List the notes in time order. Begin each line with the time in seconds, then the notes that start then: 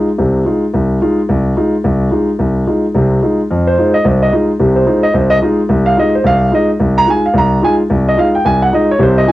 0.18 C2 C3
0.45 G#3 D#4 F4
0.74 C2
1.01 G#3 D#4 F4
1.29 C2
1.57 G#3 D#4 F4
1.84 C2
2.11 G#3 D#4 F4
2.39 C2
2.67 G#3 D#4 F4
2.95 C2 C3
3.22 G#3 D#4 F4
3.51 F2
3.67 C5
3.77 G#3 D#4 F4
3.94 D#5
4.04 C2 C5
4.22 D#5
4.32 G#3 D#4 F4
4.59 C2 C3
4.76 C5
4.86 G#3 D#4 F4
5.03 D#5
5.14 C2 C5
5.30 D#5
5.42 G#3 D#4 F4
5.69 C2
5.86 F5
5.97 G#3 D#4 F4 D#5
6.15 C5
6.24 C2 F5
6.51 G#3 D#4 F4 D#5
6.80 C2
6.98 A#5
7.06 G#3 D#4 F4 G#5
7.26 F5
7.34 C2
7.38 A#5
7.62 G#3 D#4 F4 G#5
7.90 C2
8.08 D#5
8.17 G#3 D#4 F4 F5
8.35 G5
8.45 C2 G#5
8.62 F#5
8.72 G#3 D#4 F4 D#5
8.91 C#5
8.99 C2 C3 C5
9.18 D#5
9.27 G#3 D#4 F4 G#5